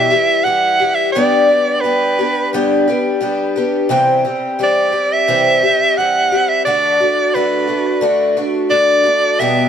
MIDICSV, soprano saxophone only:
0, 0, Header, 1, 2, 480
1, 0, Start_track
1, 0, Tempo, 689655
1, 793, Time_signature, 4, 2, 24, 8
1, 6742, End_track
2, 0, Start_track
2, 0, Title_t, "Soprano saxophone"
2, 0, Program_c, 0, 64
2, 0, Note_on_c, 0, 76, 96
2, 305, Note_on_c, 0, 78, 108
2, 315, Note_off_c, 0, 76, 0
2, 660, Note_on_c, 0, 76, 87
2, 670, Note_off_c, 0, 78, 0
2, 777, Note_off_c, 0, 76, 0
2, 781, Note_on_c, 0, 74, 86
2, 1257, Note_on_c, 0, 71, 73
2, 1268, Note_off_c, 0, 74, 0
2, 1745, Note_off_c, 0, 71, 0
2, 3224, Note_on_c, 0, 74, 85
2, 3570, Note_on_c, 0, 76, 89
2, 3580, Note_off_c, 0, 74, 0
2, 4156, Note_on_c, 0, 78, 96
2, 4167, Note_off_c, 0, 76, 0
2, 4516, Note_on_c, 0, 76, 83
2, 4526, Note_off_c, 0, 78, 0
2, 4624, Note_off_c, 0, 76, 0
2, 4629, Note_on_c, 0, 74, 89
2, 5113, Note_on_c, 0, 71, 71
2, 5123, Note_off_c, 0, 74, 0
2, 5592, Note_off_c, 0, 71, 0
2, 6057, Note_on_c, 0, 74, 93
2, 6538, Note_on_c, 0, 76, 86
2, 6548, Note_off_c, 0, 74, 0
2, 6742, Note_off_c, 0, 76, 0
2, 6742, End_track
0, 0, End_of_file